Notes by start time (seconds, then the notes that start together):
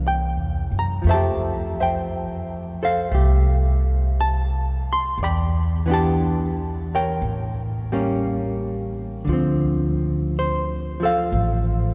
Already playing: C2 E3 A#3 C#4
0.08 G5
0.37 E2
0.71 F#2
0.79 A#5
1.02 F2 F3
1.07 A3 C5 E5 A5
1.14 G4
1.80 C5 E5 G5
2.83 A4 C5 F5
3.12 C2 A3 G4
4.21 A5
4.93 C6
5.18 E2
5.23 D5 G5 B5
5.86 E3 B3 D4
5.91 G4 A5
6.95 A#4 C#5 G5
7.22 A1
7.92 G3 A#3 C#4
9.25 D2 D3
9.29 F3
9.33 C4
10.39 C5
11.00 F3 A4 C5
11.05 F5
11.32 A1